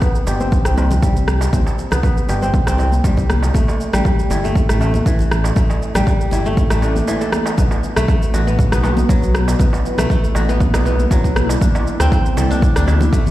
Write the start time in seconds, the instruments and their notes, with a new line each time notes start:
Already playing: kora D4 D5
0.02 kora B3, kick, shaker
0.15 shaker
0.27 detuned saw bass G1, kora G4, muted conga, darbuka tek, shaker
0.40 kora C4, high conga, shaker
0.52 kick, shaker
0.65 detuned saw bass C2, kora C4, cross-stick, shaker
0.77 kora C4, muted conga, darbuka ka, darbuka tek, high conga, shaker
0.91 high conga, low conga, shaker
1.03 kora G3, kick, shaker
1.16 detuned saw bass C2, muted conga, shaker
1.28 cross-stick, shaker
1.41 darbuka ka, shaker
1.53 detuned saw bass C2, kora C4, kick, muted conga, high conga, shaker
1.66 darbuka ka, darbuka tek, shaker
1.79 shaker
1.91 detuned saw bass C2, kora B3, cross-stick, muted conga, low conga, shaker
2.03 kora B3, kick, shaker
2.17 shaker
2.29 detuned saw bass G1, kora G4, muted conga, darbuka tek, shaker
2.41 kora C4, high conga, shaker
2.54 kick, shaker
2.67 detuned saw bass C2, kora C4, cross-stick, darbuka tek, shaker
2.78 kora C4, muted conga, darbuka ka, shaker
2.92 high conga, shaker
3.04 kora G3, kick, darbuka ka, shaker
3.17 detuned saw bass C2, kick, muted conga, shaker
3.30 cross-stick, high conga, shaker
3.43 darbuka ka, shaker
3.54 detuned saw bass A1, kora A3, kick, muted conga, high conga, shaker
3.68 darbuka ka, darbuka tek, shaker
3.80 shaker
3.93 detuned saw bass A1, kora G3, cross-stick, muted conga, shaker
4.05 kora G3, kick, shaker
4.19 shaker
4.30 detuned saw bass G1, kora E4, muted conga, darbuka tek, shaker
4.44 kora A3, high conga, shaker
4.55 kick, shaker
4.69 detuned saw bass A1, kora A3, cross-stick, shaker
4.80 kora A3, darbuka ka, muted conga, high conga, darbuka tek, shaker
4.94 high conga, low conga, shaker
5.06 kora E3, kick, shaker
5.19 detuned saw bass A1, muted conga, shaker
5.31 cross-stick, shaker
5.44 darbuka ka, shaker
5.56 detuned saw bass A1, kora A3, kick, muted conga, high conga, shaker
5.70 darbuka ka, darbuka tek, shaker
5.82 shaker
5.95 detuned saw bass A1, kora G3, cross-stick, muted conga, low conga, shaker
6.07 kora G3, kick, shaker
6.21 shaker
6.31 detuned saw bass G1, kora E4, muted conga, darbuka tek, low conga, shaker
6.45 kora A3, high conga, shaker
6.57 kick, shaker
6.70 detuned saw bass A1, kora A3, cross-stick, darbuka tek, shaker
6.82 kora D4, darbuka ka, muted conga, shaker
6.96 high conga, shaker
7.08 kora E3, darbuka ka, shaker
7.21 kora A4, muted conga, darbuka tek, shaker
7.32 cross-stick, high conga, shaker
7.46 darbuka ka, shaker
7.57 detuned saw bass B1, ambient pad B3 F#4 B4, kora B3, kick, muted conga, high conga, shaker
7.71 darbuka ka, darbuka tek, shaker
7.83 shaker
7.96 detuned saw bass B1, kora A3, cross-stick, muted conga, shaker
8.08 kora A3, kick, shaker
8.22 shaker
8.33 detuned saw bass A1, kora F#4, muted conga, darbuka tek, shaker
8.47 kora B3, high conga, shaker
8.59 kick, shaker
8.72 detuned saw bass B1, kora B3, cross-stick, shaker
8.83 kora B3, darbuka ka, muted conga, darbuka tek, high conga, shaker
8.97 high conga, low conga, shaker
9.09 kora F#3, kick, shaker
9.22 detuned saw bass B1, muted conga, shaker
9.35 cross-stick, shaker
9.48 darbuka ka, shaker
9.59 detuned saw bass B1, kora B3, ambient pad E4, kick, muted conga, high conga, shaker
9.73 darbuka ka, darbuka tek, shaker
9.86 shaker
9.98 detuned saw bass B1, kora A3, cross-stick, muted conga, low conga, shaker
10.10 kora A3, kick, shaker
10.24 shaker
10.35 detuned saw bass A1, kora F#4, muted conga, darbuka tek, shaker
10.49 kora B3, high conga, shaker
10.60 kick, shaker
10.74 detuned saw bass B1, kora B3, cross-stick, darbuka tek, shaker
10.85 kora B3, muted conga, darbuka ka, shaker
10.99 high conga, shaker
11.11 kora F#3, kick, darbuka ka, shaker
11.24 detuned saw bass B1, kick, muted conga, shaker
11.36 cross-stick, high conga, shaker
11.49 darbuka ka, shaker
11.61 detuned saw bass D2, ambient pad D3 A3 E4, kora D4, kick, muted conga, high conga, shaker
11.75 darbuka ka, darbuka tek, shaker
11.87 shaker
12.00 detuned saw bass D2, kora C4, cross-stick, muted conga, shaker
12.12 kora C4, kick, shaker
12.26 shaker
12.37 detuned saw bass C2, kora A4, muted conga, darbuka tek, shaker
12.50 kora D4, high conga, shaker
12.62 kick, shaker
12.76 detuned saw bass D2, kora D4, cross-stick, shaker
12.88 kora D4, muted conga, darbuka ka, darbuka tek, high conga, shaker
13.01 high conga, low conga, shaker
13.13 kora A3, kick, shaker
13.26 detuned saw bass D2, muted conga, shaker